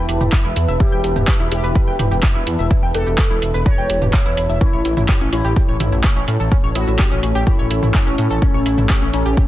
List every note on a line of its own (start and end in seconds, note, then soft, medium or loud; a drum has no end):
0.00 0.71 E4 loud
0.00 0.71 E4 medium
0.00 4.57 E4 medium
0.00 5.47 E4 medium
0.00 4.57 B4 medium
0.00 6.44 B4 loud
0.00 9.48 A5 medium
0.09 0.18 E1 loud
0.09 0.18 G4 medium
0.09 closed hi-hat loud
0.09 shaker medium
0.21 0.30 E1 medium
0.21 0.26 G4 medium
0.21 mid tom medium
0.21 shaker soft
0.33 0.41 E4 medium
0.33 kick loud
0.33 clap loud
0.33 shaker soft
0.45 0.53 E1 medium
0.45 0.53 E4 loud
0.56 0.65 E2 loud
0.56 0.65 E4 medium
0.56 closed hi-hat loud
0.56 shaker medium
0.68 0.77 E1 medium
0.68 0.77 E5 medium
0.68 shaker soft
0.80 0.86 E4 medium
0.80 1.42 G4 loud
0.80 kick loud
0.80 shaker soft
0.92 1.01 E1 medium
0.92 1.01 G5 medium
1.04 1.13 E1 loud
1.04 1.13 G4 medium
1.04 closed hi-hat loud
1.04 shaker medium
1.16 1.25 E1 medium
1.16 1.21 G4 medium
1.16 mid tom medium
1.16 shaker soft
1.28 1.37 B4 medium
1.28 kick loud
1.28 clap loud
1.28 shaker soft
1.40 1.49 E1 medium
1.40 1.49 E4 loud
1.52 1.61 E1 loud
1.52 1.61 E4 medium
1.52 2.14 G4 loud
1.52 2.14 G4 medium
1.52 closed hi-hat loud
1.52 shaker medium
1.64 1.72 E1 loud
1.64 1.72 B4 loud
1.64 shaker soft
1.75 1.81 B4 medium
1.75 kick loud
1.75 shaker soft
1.88 1.96 E1 medium
1.88 1.96 G5 medium
1.99 2.08 E1 loud
1.99 2.08 G4 medium
1.99 closed hi-hat loud
1.99 mid tom loud
1.99 shaker medium
2.11 2.20 E1 medium
2.11 2.17 G4 medium
2.11 shaker soft
2.23 2.32 E4 medium
2.23 kick loud
2.23 clap loud
2.23 shaker soft
2.35 2.44 E1 medium
2.35 2.44 E4 loud
2.47 2.56 E2 medium
2.47 2.56 E4 medium
2.47 closed hi-hat loud
2.47 shaker medium
2.59 2.68 E1 medium
2.59 2.68 E5 medium
2.59 shaker soft
2.71 2.76 E4 medium
2.71 kick loud
2.71 shaker soft
2.83 2.91 E1 medium
2.83 2.91 G5 medium
2.94 3.03 E1 loud
2.94 3.03 G4 medium
2.94 3.57 A4 loud
2.94 closed hi-hat loud
2.94 shaker medium
3.07 3.15 E1 medium
3.07 3.12 G4 medium
3.07 shaker soft
3.18 3.27 B4 medium
3.18 kick loud
3.18 clap loud
3.18 shaker soft
3.30 3.39 E1 medium
3.30 3.39 E4 loud
3.42 3.51 E1 loud
3.42 3.51 E4 medium
3.42 closed hi-hat loud
3.42 shaker medium
3.54 3.63 E1 loud
3.54 3.63 B4 loud
3.54 shaker soft
3.66 3.71 B4 medium
3.66 4.52 C#5 medium
3.66 4.52 C#5 loud
3.66 kick loud
3.66 shaker soft
3.78 3.87 E1 medium
3.78 3.87 G5 medium
3.90 3.99 E1 loud
3.90 3.99 G4 medium
3.90 closed hi-hat loud
3.90 shaker medium
4.02 4.11 E1 medium
4.02 4.07 G4 medium
4.02 mid tom medium
4.02 shaker soft
4.14 4.22 E4 medium
4.14 kick loud
4.14 clap loud
4.14 shaker soft
4.26 4.34 E1 medium
4.26 4.34 E4 loud
4.37 4.46 E1 medium
4.37 4.46 E4 medium
4.37 closed hi-hat loud
4.37 shaker medium
4.49 4.58 E1 medium
4.49 4.58 E5 medium
4.49 shaker soft
4.61 9.48 A3 medium
4.61 4.66 C#4 medium
4.61 9.48 C#4 medium
4.61 5.23 E4 loud
4.61 9.48 C#5 medium
4.61 kick loud
4.61 shaker soft
4.73 4.82 A1 medium
4.73 4.82 C#5 medium
4.85 4.94 A1 loud
4.85 4.94 E4 medium
4.85 closed hi-hat loud
4.85 shaker medium
4.97 5.06 A1 medium
4.97 5.02 E4 medium
4.97 9.48 A4 medium
4.97 mid tom medium
4.97 shaker soft
5.09 5.18 G4 medium
5.09 kick loud
5.09 clap loud
5.09 shaker soft
5.21 5.30 A1 medium
5.21 5.30 C#4 loud
5.33 5.42 A1 loud
5.33 5.42 C#4 medium
5.33 5.95 E4 medium
5.33 5.95 E4 loud
5.33 closed hi-hat loud
5.33 shaker medium
5.45 5.53 A1 loud
5.45 5.53 G4 loud
5.45 shaker soft
5.56 5.62 G4 medium
5.56 kick loud
5.56 shaker soft
5.68 5.77 A1 medium
5.68 5.77 C#5 medium
5.80 5.89 A1 loud
5.80 5.89 E4 medium
5.80 closed hi-hat loud
5.80 mid tom medium
5.80 shaker medium
5.92 6.01 A1 medium
5.92 5.98 E4 medium
5.92 shaker soft
6.04 6.13 C#4 medium
6.04 kick loud
6.04 clap loud
6.04 shaker soft
6.16 6.25 A1 medium
6.16 6.25 C#4 loud
6.28 6.37 A2 medium
6.28 6.37 C#4 medium
6.28 closed hi-hat loud
6.28 shaker medium
6.40 6.49 A1 medium
6.40 6.49 A4 medium
6.40 shaker soft
6.52 6.57 C#4 medium
6.52 kick loud
6.52 shaker soft
6.64 6.72 A1 medium
6.64 6.72 C#5 medium
6.75 6.84 A1 loud
6.75 6.84 E4 medium
6.75 7.37 F#4 loud
6.75 7.37 F#4 medium
6.75 closed hi-hat loud
6.75 shaker medium
6.87 6.96 A1 loud
6.87 6.93 E4 medium
6.87 shaker soft
6.99 7.08 G4 medium
6.99 kick loud
6.99 clap loud
6.99 shaker soft
7.11 7.20 A1 medium
7.11 7.20 C#4 loud
7.23 7.32 A1 loud
7.23 7.32 C#4 medium
7.23 closed hi-hat loud
7.23 shaker medium
7.35 7.44 A1 medium
7.35 7.44 G4 loud
7.35 shaker soft
7.47 8.33 E4 medium
7.47 8.33 E4 loud
7.47 kick loud
7.47 shaker soft
7.59 7.68 A1 medium
7.59 7.68 C#5 medium
7.71 7.80 A1 loud
7.71 7.80 E4 medium
7.71 closed hi-hat loud
7.71 shaker medium
7.83 7.91 A1 medium
7.83 7.88 E4 medium
7.83 mid tom medium
7.83 shaker soft
7.94 8.03 C#4 medium
7.94 kick loud
7.94 clap medium
7.94 shaker soft
8.07 8.15 A1 medium
8.07 8.15 C#4 loud
8.18 8.27 A2 medium
8.18 8.27 C#4 medium
8.18 closed hi-hat loud
8.18 shaker medium
8.30 8.39 A1 medium
8.30 8.39 A4 medium
8.30 shaker soft
8.42 9.04 C#4 loud
8.42 8.47 C#4 medium
8.42 kick loud
8.42 shaker soft
8.54 8.63 A1 medium
8.54 8.63 C#5 medium
8.66 8.75 A1 loud
8.66 8.75 E4 medium
8.66 closed hi-hat loud
8.66 shaker medium
8.78 8.87 A1 medium
8.78 8.83 E4 medium
8.78 mid tom medium
8.78 shaker soft
8.90 8.99 G4 medium
8.90 kick loud
8.90 clap loud
8.90 shaker soft
9.02 9.11 A1 medium
9.02 9.10 C#4 loud
9.13 9.22 A1 loud
9.13 9.48 C#4 loud
9.13 9.48 C#4 medium
9.13 9.23 C#4 medium
9.13 closed hi-hat loud
9.13 shaker medium
9.26 9.34 A1 medium
9.26 9.34 G4 loud
9.26 shaker soft
9.37 9.43 G4 medium
9.37 kick loud
9.37 shaker soft